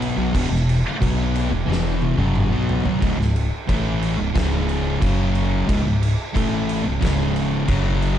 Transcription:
0.00 0.15 B1 loud
0.00 0.16 B2 loud
0.00 0.16 F#3 loud
0.00 0.17 B3 loud
0.00 crash medium
0.16 0.32 B1 medium
0.16 0.33 B2 loud
0.16 0.33 F#3 loud
0.34 0.50 E1 medium
0.34 0.49 E2 medium
0.34 0.49 B2 loud
0.34 kick loud
0.34 crash medium
0.50 0.82 E1 medium
0.50 0.77 E2 medium
0.50 0.77 B2 medium
0.55 snare soft
0.69 crash medium
1.01 1.48 B1 loud
1.01 1.50 B2 medium
1.01 1.50 F#3 medium
1.01 1.50 B3 loud
1.01 kick medium
1.01 crash medium
1.35 crash medium
1.50 1.66 E1 medium
1.50 1.67 E2 medium
1.50 1.67 B2 medium
1.67 2.14 E1 medium
1.67 2.17 E2 loud
1.67 2.17 B2 loud
1.67 2.17 E3 loud
1.72 snare medium
2.02 high tom medium
2.17 2.48 F#1 loud
2.17 2.50 F#2 medium
2.17 2.50 C#3 medium
2.17 2.50 F#3 loud
2.17 high tom medium
2.35 mid tom medium
2.51 2.82 B1 loud
2.51 2.83 B2 medium
2.51 2.83 F#3 loud
2.51 2.84 B3 loud
2.69 floor tom loud
2.85 3.00 B1 loud
2.85 3.00 B2 medium
2.85 3.00 F#3 loud
2.85 floor tom loud
3.01 3.16 C#1 medium
3.01 3.16 C#2 loud
3.01 3.17 G#2 loud
3.01 kick loud
3.01 crash medium
3.17 3.48 C#1 medium
3.17 3.45 C#2 medium
3.17 3.44 G#2 medium
3.21 snare soft
3.36 crash medium
3.68 4.15 A1 loud
3.68 4.17 A2 loud
3.68 4.17 E3 loud
3.68 4.17 A3 loud
3.68 kick loud
3.68 crash medium
4.03 crash medium
4.18 4.33 C#1 medium
4.18 4.33 C#2 medium
4.18 4.34 G#2 medium
4.34 4.97 C#1 medium
4.34 5.00 C#2 medium
4.34 5.00 G#2 loud
4.34 5.00 C#3 loud
4.34 kick loud
4.34 snare loud
4.34 crash medium
4.69 crash medium
5.01 5.64 F#1 loud
5.01 5.66 F#2 medium
5.01 5.66 C#3 loud
5.01 5.66 F#3 loud
5.01 kick loud
5.01 crash medium
5.35 crash medium
5.67 5.84 C#1 medium
5.67 5.82 C#2 loud
5.67 5.82 G#2 loud
5.67 kick loud
5.67 crash medium
5.83 6.15 C#1 medium
5.83 6.10 C#2 medium
5.83 6.10 G#2 medium
6.03 crash medium
6.34 6.81 A1 medium
6.34 6.83 A2 loud
6.34 6.83 E3 loud
6.34 6.83 A3 loud
6.34 kick loud
6.34 crash medium
6.69 crash medium
6.84 7.00 C#1 medium
6.84 6.99 C#2 medium
6.84 7.00 G#2 medium
7.00 7.64 C#1 medium
7.00 7.67 C#2 loud
7.00 7.68 G#2 loud
7.00 7.68 C#3 loud
7.00 kick loud
7.00 crash medium
7.05 snare loud
7.36 crash medium
7.67 8.19 F#1 loud
7.67 8.19 F#2 loud
7.67 8.19 C#3 loud
7.67 8.19 F#3 loud
7.67 kick loud
7.67 crash medium
8.02 crash medium

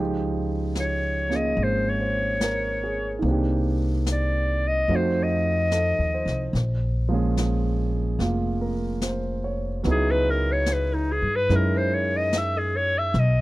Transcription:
0.00 1.54 C#2 medium
0.00 3.22 F3 soft
0.00 3.23 G#3 soft
0.00 3.24 D#4 soft
0.00 3.25 G4 medium
0.75 snare soft
0.75 hi-hat pedal soft
0.80 1.37 C#5 medium
1.29 3.21 A#3 soft
1.29 3.23 C#4 soft
1.29 3.24 F4 soft
1.29 2.82 G#4 soft
1.29 snare soft
1.36 1.65 D#5 medium
1.57 3.19 G#1 medium
1.57 brush sweep soft
1.63 1.91 C5 medium
1.89 3.16 C#5 medium
2.01 2.58 C5 soft
2.41 3.07 A#4 soft
2.41 snare soft
2.41 hi-hat pedal medium
2.84 3.41 G#4 soft
3.19 4.84 C2 medium
3.19 4.86 D#3 soft
3.19 4.88 A#3 soft
3.23 4.89 C4 soft
3.23 4.91 D4 soft
3.23 brush sweep soft
3.31 4.92 G4 soft
4.06 snare soft
4.06 hi-hat pedal medium
4.12 4.69 D5 medium
4.68 4.97 D#5 medium
4.88 5.95 F2 medium
4.88 6.54 F3 soft
4.88 6.54 A3 soft
4.88 6.55 C4 soft
4.88 6.55 D#4 soft
4.88 6.55 F#4 medium
4.88 brush sweep soft
4.96 5.25 C5 medium
5.23 6.48 D#5 medium
5.71 6.37 A4 soft
5.71 snare soft
5.71 hi-hat pedal medium
5.99 6.24 D#2 medium
6.14 6.71 C5 soft
6.26 6.52 C2 medium
6.26 snare soft
6.53 8.15 A#1 medium
6.53 brush sweep soft
6.53 snare soft
7.09 9.84 F3 soft
7.09 9.85 G#3 soft
7.09 8.17 A#3 soft
7.13 9.86 C#4 soft
7.13 9.86 G#4 medium
7.37 snare soft
7.37 hi-hat pedal soft
8.19 9.80 F1 medium
8.19 9.84 A#3 soft
8.19 9.86 F4 soft
8.19 brush sweep soft
8.19 snare soft
8.61 9.19 A#4 soft
9.02 9.67 C5 soft
9.02 snare soft
9.02 hi-hat pedal medium
9.44 10.02 C#5 soft
9.83 11.19 C#2 medium
9.83 11.50 F#3 medium
9.83 11.50 B3 soft
9.83 11.49 D#4 soft
9.83 11.49 E4 soft
9.83 brush sweep soft
9.83 snare soft
9.88 11.52 G#4 medium
9.88 10.13 G#4 medium
10.11 10.32 B4 medium
10.30 10.54 A#4 medium
10.52 10.75 C#5 medium
10.66 snare soft
10.66 hi-hat pedal soft
10.73 10.96 B4 medium
10.94 11.14 D#4 medium
11.12 11.37 G#4 medium
11.22 11.48 G2 medium
11.36 11.57 B4 medium
11.49 13.12 F#2 medium
11.49 13.16 G#3 soft
11.49 13.16 C#4 soft
11.49 13.16 D#4 soft
11.49 13.16 E4 soft
11.49 13.16 A#4 medium
11.49 brush sweep soft
11.49 snare soft
11.55 11.79 A#4 medium
11.77 11.96 C5 medium
11.94 12.18 C#5 medium
12.17 12.39 D#5 medium
12.33 snare soft
12.33 hi-hat pedal medium
12.38 12.60 E5 medium
12.58 12.78 G#4 medium
12.77 13.00 C#5 medium
12.98 13.21 E5 medium
13.14 13.41 B1 medium
13.14 brush sweep soft
13.14 snare soft
13.19 13.41 D#5 medium

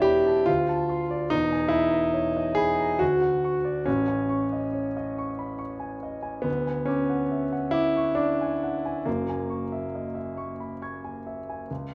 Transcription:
0.00 0.42 E1 medium
0.00 0.43 E2 medium
0.00 0.51 D4 loud
0.00 0.51 E4 loud
0.00 0.46 G4 loud
0.00 0.51 C#5 soft
0.00 0.51 D5 soft
0.00 0.51 E5 soft
0.00 0.04 B5 soft
0.04 0.39 B5 soft
0.27 0.48 A5 soft
0.46 1.29 D2 medium
0.46 1.31 F4 loud
0.69 1.03 A5 soft
0.89 1.23 C6 soft
1.10 1.32 D5 medium
1.30 2.97 E1 medium
1.30 2.97 E2 medium
1.30 1.73 D#4 loud
1.52 1.86 G#5 soft
1.68 2.56 E4 medium
1.68 2.06 B5 medium
1.92 2.27 D#5 soft
2.14 2.36 C#5 soft
2.37 2.71 D#5 soft
2.55 3.00 G#4 loud
2.55 2.92 B5 medium
2.80 3.01 A#5 soft
2.99 3.84 D2 medium
2.99 3.86 F#4 medium
3.21 3.56 F#5 soft
3.45 3.78 C#6 soft
3.65 3.86 D5 soft
3.86 6.43 A1 soft
3.86 6.44 A2 soft
3.86 5.61 C#4 medium
4.08 4.43 G#5 soft
4.29 4.65 C#6 soft
4.53 4.88 D#5 soft
4.74 4.96 C#5 soft
4.97 5.31 D#5 soft
5.18 5.53 C#6 soft
5.39 5.61 B5 soft
5.59 5.94 C#6 soft
5.80 6.16 G#5 soft
6.03 6.38 D#5 soft
6.23 6.46 G#5 soft
6.42 9.01 D2 soft
6.42 6.87 B3 medium
6.67 7.02 G#5 soft
6.85 7.73 C#4 medium
6.85 7.23 D6 soft
7.10 7.44 F#5 soft
7.31 7.53 E5 soft
7.52 7.88 F#5 soft
7.71 8.17 E4 loud
7.71 8.09 D6 soft
7.97 8.19 C#6 soft
8.15 9.04 D4 medium
8.15 8.53 D6 soft
8.41 8.76 G#5 soft
8.63 8.98 F#5 soft
8.86 9.07 G#5 soft
9.05 11.65 F#1 soft
9.05 11.66 F#2 soft
9.05 10.80 A#3 medium
9.30 9.63 G#5 soft
9.50 9.84 C#6 soft
9.72 10.07 E5 soft
9.95 10.16 D#5 soft
10.15 10.50 E5 soft
10.37 10.72 C#6 soft
10.60 10.82 B5 soft
10.82 11.17 C#6 soft
10.82 11.66 G#6 soft
11.04 11.40 G#5 soft
11.27 11.62 E5 soft
11.50 11.71 G#5 soft
11.71 11.94 C#2 soft

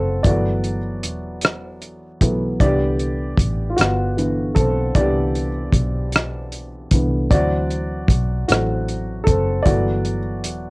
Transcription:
0.00 0.21 F#1 medium
0.00 0.21 E3 soft
0.00 0.21 F#3 soft
0.00 0.26 A3 soft
0.00 0.23 C4 medium
0.00 0.27 F4 soft
0.00 0.26 F#4 medium
0.00 0.25 A4 medium
0.23 1.04 G1 medium
0.23 0.77 E3 soft
0.23 0.77 F#3 soft
0.23 0.78 A3 soft
0.23 0.78 B3 medium
0.23 1.78 F#4 medium
0.23 1.77 D5 medium
0.23 kick medium
0.23 closed hi-hat medium
0.64 closed hi-hat soft
1.03 2.21 E1 medium
1.03 closed hi-hat medium
1.41 cross-stick medium
1.41 closed hi-hat medium
1.82 closed hi-hat soft
2.21 2.56 B1 medium
2.21 2.56 E3 soft
2.21 2.56 F#3 soft
2.21 2.56 A3 soft
2.21 2.57 B3 soft
2.21 kick medium
2.21 closed hi-hat medium
2.60 3.34 C2 medium
2.60 3.74 D3 soft
2.60 3.74 E3 soft
2.60 3.75 B3 medium
2.60 3.36 G4 medium
2.60 3.34 D5 medium
2.60 kick loud
2.60 closed hi-hat medium
2.99 closed hi-hat soft
3.37 3.73 A1 medium
3.37 kick medium
3.37 closed hi-hat medium
3.70 3.77 F4 medium
3.76 4.53 G1 medium
3.76 4.17 B3 soft
3.76 4.58 F#4 medium
3.76 closed hi-hat medium
3.81 cross-stick medium
4.17 4.52 D3 soft
4.17 4.52 E3 soft
4.17 4.53 B3 soft
4.17 closed hi-hat soft
4.55 4.92 B1 medium
4.55 4.93 C4 medium
4.55 4.96 A4 medium
4.55 kick medium
4.55 closed hi-hat medium
4.95 5.70 C2 medium
4.95 5.47 D3 soft
4.95 5.48 E3 soft
4.95 5.48 B3 medium
4.95 6.49 G4 medium
4.95 6.48 D5 medium
4.95 kick medium
4.95 closed hi-hat medium
5.35 closed hi-hat soft
5.72 6.87 B1 medium
5.72 kick medium
5.72 closed hi-hat medium
6.12 cross-stick medium
6.12 closed hi-hat medium
6.52 closed hi-hat soft
6.91 7.27 C2 medium
6.91 7.27 D3 soft
6.91 7.28 E3 soft
6.91 7.28 B3 soft
6.91 kick medium
6.91 closed hi-hat medium
7.31 8.05 D2 medium
7.31 8.45 E3 soft
7.31 8.45 F#3 soft
7.31 8.45 C4 medium
7.31 8.06 F#4 medium
7.31 8.05 D5 medium
7.31 kick loud
7.31 closed hi-hat medium
7.70 closed hi-hat soft
8.08 8.44 B1 medium
8.08 kick medium
8.08 closed hi-hat medium
8.48 9.29 A1 medium
8.48 8.84 E3 soft
8.48 8.84 F#3 soft
8.48 9.23 A3 medium
8.48 8.84 C4 soft
8.48 9.29 F#4 medium
8.48 cross-stick medium
8.48 closed hi-hat medium
8.88 closed hi-hat soft
9.24 9.62 F#1 medium
9.24 9.62 A4 medium
9.24 kick medium
9.24 closed hi-hat medium
9.28 9.64 C4 medium
9.63 10.45 G1 medium
9.63 10.18 E3 soft
9.63 10.18 F#3 soft
9.63 10.18 B3 medium
9.63 10.70 D5 medium
9.63 kick medium
9.63 closed hi-hat medium
9.67 10.18 A3 soft
9.67 10.70 F#4 medium
10.05 closed hi-hat soft
10.44 10.70 E1 medium
10.44 closed hi-hat medium

